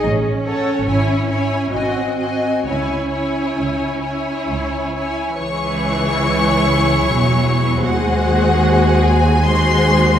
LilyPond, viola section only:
\new Staff \with { instrumentName = "Viola section" } { \time 3/4 \key cis \minor \tempo 4 = 73 << { r2. | r2. | e'2. | fis'2 fis'4 | } \\ { r8 a'8 e'8 e'8 fis'8 fis'8 | e'8 e'4 e'4 e'8 | e2 fis4 | gis2 gis4 | } >> }